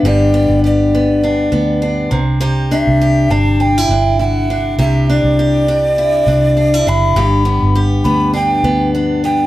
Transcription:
0.00 0.46 G1 loud
0.00 0.33 B3 medium
0.00 1.23 D4 medium
0.05 2.18 G2 medium
0.05 0.63 G4 medium
0.05 0.60 D5 medium
0.34 0.93 B3 medium
0.49 1.48 G1 medium
0.64 2.41 G4 medium
0.64 2.09 D5 medium
0.95 1.51 B3 medium
1.23 1.81 D4 medium
1.52 2.07 D2 medium
1.52 2.18 B3 soft
1.82 2.44 D4 medium
2.11 2.83 C2 medium
2.11 2.39 C3 medium
2.41 4.78 C3 medium
2.41 3.01 G4 medium
2.71 3.30 D4 medium
2.71 3.32 E5 medium
2.87 3.27 C2 medium
3.01 4.79 G4 medium
3.30 3.85 G1 medium
3.30 3.60 D4 medium
3.30 3.62 A5 medium
3.60 3.78 D4 medium
3.60 4.19 G5 medium
3.78 4.18 E4 soft
3.89 4.74 G1 medium
3.89 4.50 D4 medium
4.19 5.97 E4 medium
4.19 4.25 G5 medium
4.24 4.75 F#5 medium
4.50 5.09 D4 medium
4.78 5.20 C2 medium
4.78 7.16 C3 medium
4.78 5.39 G4 soft
4.78 5.07 E5 medium
5.10 5.68 D4 medium
5.10 6.90 D5 loud
5.23 6.22 C2 medium
5.39 7.17 G4 medium
5.68 6.27 D4 medium
5.98 6.56 E4 medium
6.27 6.82 C2 medium
6.27 6.57 D4 soft
6.57 6.74 D4 medium
6.74 7.23 E4 soft
6.87 7.13 F#1 medium
6.87 7.45 D4 soft
6.87 7.79 B5 medium
7.16 7.58 G1 loud
7.16 9.47 G2 medium
7.16 7.75 G4 medium
7.45 8.04 B3 medium
7.62 8.01 G1 medium
7.75 9.47 G4 medium
8.04 8.60 D2 medium
8.04 8.63 B3 medium
8.04 8.32 B5 loud
8.33 8.94 D4 medium
8.33 8.90 G5 medium
8.63 9.47 D2 medium
8.63 9.23 B3 medium
8.95 9.47 D4 medium
9.24 9.47 B3 medium
9.24 9.47 G5 medium

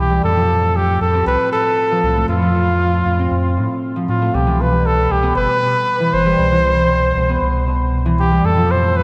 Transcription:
0.00 0.21 C2 loud
0.00 0.29 B2 medium
0.00 1.20 B3 loud
0.00 0.23 G4 medium
0.10 0.29 G3 loud
0.23 0.98 F2 loud
0.23 0.49 A2 medium
0.23 0.78 A4 loud
0.37 1.90 F3 loud
0.50 1.00 A2 medium
0.63 2.16 A3 medium
0.77 1.01 G4 loud
1.01 1.23 F2 medium
1.01 1.52 A2 medium
1.01 1.25 A4 medium
1.14 3.19 C4 loud
1.26 1.37 C2 medium
1.26 1.51 B4 loud
1.52 2.03 A2 medium
1.52 2.25 A4 loud
1.91 2.40 F3 loud
2.03 2.25 C2 medium
2.03 2.28 A2 medium
2.16 2.67 A3 loud
2.29 3.03 F2 loud
2.29 2.54 A2 medium
2.29 3.79 F4 medium
2.42 3.95 F3 loud
2.55 3.05 A2 medium
2.68 4.21 A3 medium
3.06 3.28 F2 medium
3.06 3.56 A2 medium
3.19 4.40 C4 loud
3.31 3.59 F2 loud
3.57 4.07 A2 medium
3.57 3.68 A2 medium
3.96 4.39 F3 loud
4.08 4.30 A2 medium
4.08 4.39 A2 medium
4.08 4.36 F4 medium
4.22 7.54 A3 medium
4.34 5.08 C2 loud
4.34 4.59 B2 medium
4.34 4.62 G4 medium
4.47 4.65 E3 loud
4.60 5.09 B2 medium
4.60 4.88 B4 medium
4.72 6.24 G3 medium
4.86 5.13 A4 loud
5.11 5.33 C2 medium
5.11 5.60 B2 medium
5.11 5.35 G4 medium
5.23 7.29 B3 loud
5.36 5.47 G1 medium
5.36 6.15 B4 loud
5.62 6.12 B2 medium
6.00 6.19 E3 loud
6.13 6.35 G1 medium
6.13 6.38 B2 medium
6.13 7.67 C5 loud
6.26 6.77 G3 loud
6.39 7.13 C2 loud
6.39 6.64 B2 medium
6.52 6.70 E3 loud
6.65 7.16 B2 medium
6.79 8.30 G3 medium
7.16 7.38 C2 medium
7.16 7.66 B2 medium
7.29 9.03 B3 loud
7.42 8.41 C2 loud
7.68 8.18 B2 medium
8.06 8.24 E3 loud
8.19 8.50 B2 medium
8.19 8.47 G4 medium
8.31 8.50 G3 medium
8.44 9.03 F2 loud
8.44 8.69 A2 medium
8.44 8.73 A4 medium
8.57 9.03 F3 loud
8.70 9.03 A2 medium
8.70 8.98 C5 medium
8.82 9.03 A3 medium
8.97 9.03 B4 loud

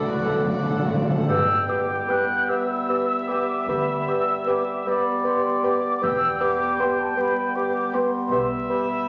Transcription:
0.00 0.07 D3 medium
0.00 0.95 F#3 medium
0.00 0.91 A3 medium
0.00 0.95 D4 medium
0.00 0.91 A4 medium
0.00 0.96 D5 medium
0.00 0.84 B5 loud
0.06 1.14 D2 medium
0.06 0.46 E2 medium
0.06 0.14 D3 medium
0.06 0.26 A3 medium
0.06 0.26 F#4 medium
0.06 0.26 D5 medium
0.06 0.92 F#6 medium
0.15 0.21 D3 medium
0.22 0.29 D3 medium
0.22 0.47 D4 soft
0.22 0.46 A4 medium
0.22 0.47 A4 soft
0.22 0.46 F#5 medium
0.30 0.38 D3 medium
0.39 0.45 D3 medium
0.46 0.88 F#2 medium
0.46 0.53 D3 medium
0.46 0.65 A3 medium
0.46 0.65 F#4 medium
0.46 0.66 D5 medium
0.54 0.61 D3 medium
0.62 0.68 D3 medium
0.62 0.87 D4 medium
0.62 0.87 A4 medium
0.62 0.87 A4 soft
0.62 0.87 F#5 medium
0.70 0.76 D3 medium
0.78 0.84 D3 loud
0.85 1.29 A2 medium
0.85 0.92 D3 loud
0.85 1.08 A3 medium
0.85 1.07 F#4 medium
0.85 1.08 F#4 medium
0.85 1.08 D5 soft
0.93 1.01 D3 loud
1.02 1.08 D3 loud
1.07 1.16 D3 loud
1.07 1.28 D4 soft
1.07 1.28 A4 medium
1.07 1.28 A4 soft
1.07 1.28 F#5 soft
1.17 1.25 D3 loud
1.28 2.28 G1 medium
1.28 2.28 G2 medium
1.28 2.46 G2 medium
1.28 3.66 G3 medium
1.28 1.45 B3 medium
1.28 3.65 B3 medium
1.28 1.44 G4 medium
1.28 2.46 G5 medium
1.28 1.71 E6 loud
1.68 1.84 B3 medium
1.68 1.85 G4 medium
1.68 2.12 D6 medium
2.09 2.25 B3 medium
2.09 2.39 B3 medium
2.09 2.25 G4 medium
2.09 2.40 G4 medium
2.09 2.40 G5 medium
2.09 2.51 F#6 loud
2.49 2.65 B3 medium
2.49 2.65 G4 medium
2.49 4.90 E5 medium
2.49 3.29 E6 medium
2.89 3.05 B3 medium
2.89 3.05 G4 medium
3.28 3.44 B3 medium
3.28 3.59 B3 medium
3.28 3.46 G4 medium
3.28 3.59 G4 medium
3.28 3.59 G5 medium
3.28 3.71 D6 medium
3.68 4.66 D2 medium
3.68 4.85 G3 medium
3.68 3.84 B3 medium
3.68 4.85 B3 medium
3.68 3.85 G4 medium
3.68 4.11 B5 medium
4.07 4.23 B3 medium
4.07 4.24 G4 medium
4.07 4.50 E6 loud
4.47 4.63 B3 medium
4.47 4.77 B3 medium
4.47 4.63 G4 medium
4.47 4.78 G4 medium
4.47 4.78 G5 medium
4.47 4.87 D6 medium
4.86 6.00 G3 medium
4.86 5.02 B3 medium
4.86 6.00 B3 medium
4.86 5.02 G4 medium
4.86 6.02 D5 medium
4.86 5.28 B5 medium
5.24 5.40 B3 medium
5.24 5.42 G4 medium
5.24 5.67 C6 medium
5.63 5.79 B3 medium
5.63 5.93 B3 medium
5.63 5.80 G4 medium
5.63 5.93 G4 medium
5.63 5.93 G5 medium
5.63 6.05 D6 loud
6.01 6.97 E1 medium
6.01 6.97 E2 medium
6.01 7.17 G3 medium
6.01 6.17 B3 medium
6.01 7.16 B3 medium
6.01 6.19 G4 medium
6.01 8.00 G5 medium
6.01 6.43 E6 loud
6.40 6.56 B3 medium
6.40 6.57 G4 medium
6.40 6.82 D6 loud
6.79 6.95 B3 medium
6.79 7.08 B3 medium
6.79 6.96 G4 medium
6.79 7.09 G4 medium
6.79 7.09 G5 medium
6.79 7.01 C6 medium
6.99 7.17 A5 loud
7.17 9.09 G3 medium
7.17 7.33 B3 medium
7.17 9.09 B3 medium
7.17 7.34 G4 medium
7.17 7.57 B5 loud
7.56 7.72 B3 medium
7.56 7.72 G4 medium
7.56 7.96 D6 loud
7.93 8.22 B3 medium
7.93 8.10 B3 medium
7.93 8.09 G4 medium
7.93 8.22 G4 medium
7.93 8.22 G5 medium
7.93 8.45 C6 medium
8.31 9.09 B1 medium
8.31 9.09 B2 medium
8.31 8.47 B3 medium
8.31 8.47 G4 medium
8.31 9.09 E5 loud
8.69 8.86 B3 medium
8.69 8.86 G4 medium
8.69 9.09 B5 loud

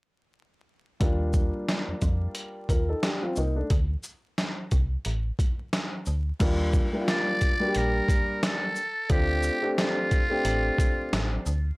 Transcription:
1.00 1.52 D#2 loud
1.00 3.66 G3 medium
1.00 2.66 A#3 medium
1.00 2.66 D4 medium
1.00 2.67 F4 medium
1.00 kick loud
1.00 closed hi-hat medium
1.33 kick medium
1.33 shaker medium
1.69 snare medium
1.69 closed hi-hat medium
1.88 1.94 F2 soft
2.02 2.28 F2 medium
2.02 kick medium
2.02 closed hi-hat soft
2.02 shaker soft
2.35 closed hi-hat medium
2.69 2.95 D#2 medium
2.69 2.88 F4 soft
2.69 2.88 A#4 medium
2.69 kick medium
2.69 closed hi-hat soft
2.69 shaker soft
2.89 3.03 D#4 soft
2.89 3.02 A4 medium
3.03 3.22 D4 medium
3.03 3.21 G4 medium
3.03 snare loud
3.03 closed hi-hat medium
3.23 3.37 C4 medium
3.23 3.36 F4 medium
3.36 3.63 C2 medium
3.36 3.56 A#3 soft
3.36 3.55 D#4 medium
3.36 shaker soft
3.56 3.70 A3 soft
3.56 3.70 D4 medium
3.70 3.96 D2 loud
3.70 kick loud
3.70 closed hi-hat medium
4.03 shaker medium
4.38 snare medium
4.38 closed hi-hat medium
4.71 4.97 C2 medium
4.71 kick medium
4.71 closed hi-hat soft
4.71 shaker soft
5.05 5.31 A1 loud
5.05 closed hi-hat medium
5.39 kick medium
5.39 closed hi-hat soft
5.39 shaker soft
5.73 snare loud
5.73 closed hi-hat medium
6.06 6.32 D2 medium
6.06 shaker soft
6.39 6.81 D#2 loud
6.39 6.85 G3 medium
6.39 6.85 A#3 medium
6.39 6.86 D4 medium
6.39 6.86 F4 medium
6.39 kick loud
6.39 closed hi-hat medium
6.39 crash medium
6.73 kick medium
6.73 shaker medium
6.93 7.50 G3 medium
6.93 7.50 A#3 medium
6.93 7.50 D4 medium
6.93 6.99 E4 medium
7.01 7.54 F4 medium
7.08 7.79 D5 loud
7.08 snare loud
7.08 closed hi-hat medium
7.41 kick medium
7.41 closed hi-hat soft
7.41 shaker soft
7.60 8.74 G3 medium
7.60 8.75 A#3 medium
7.60 8.75 D4 medium
7.60 7.67 F#4 medium
7.68 8.79 G4 medium
7.75 8.01 A#1 medium
7.75 8.44 A#4 medium
7.75 closed hi-hat medium
8.09 kick medium
8.09 closed hi-hat medium
8.09 shaker medium
8.43 9.07 A4 medium
8.43 snare loud
8.43 closed hi-hat medium
8.76 shaker soft
9.09 9.50 D2 loud
9.09 9.55 A3 medium
9.09 9.55 C4 medium
9.09 9.55 D4 medium
9.09 9.55 F4 medium
9.09 9.74 G4 medium
9.09 kick loud
9.09 closed hi-hat medium
9.43 shaker medium
9.62 10.19 A3 medium
9.62 10.19 C4 medium
9.62 10.20 D4 medium
9.62 10.20 G4 medium
9.78 11.43 F4 medium
9.78 snare loud
9.78 closed hi-hat medium
10.11 kick medium
10.11 closed hi-hat soft
10.11 shaker soft
10.30 11.44 A3 medium
10.30 11.45 C4 medium
10.30 11.45 D4 medium
10.30 11.45 G4 medium
10.45 10.70 A1 loud
10.45 closed hi-hat medium
10.78 kick medium
10.78 closed hi-hat soft
10.78 shaker medium
11.13 11.38 A1 loud
11.13 snare loud
11.13 closed hi-hat medium
11.46 11.72 D2 loud
11.46 shaker soft

